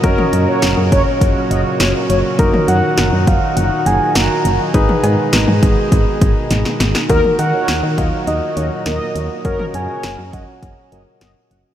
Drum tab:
HH |x-x-x-x-x-x-x-x-|x-x-x-x-x-x-x-x-|x-x-x-x-x-x-x-x-|x-x-x-x-x-x-x-x-|
CB |----------------|----------------|--x-------------|----------------|
SD |----o-------o---|----o-------o---|----o-------oooo|----o-------o---|
T2 |-o--------------|-o--------------|-o---o----------|-o--------------|
BD |o-----o-o-------|o-----o---------|o-----o-o-o-----|o-----o---------|

HH |x-x-x-x-x-x-x-x-|
CB |----------------|
SD |----o-------o---|
T2 |-o--------------|
BD |o-----o-o-------|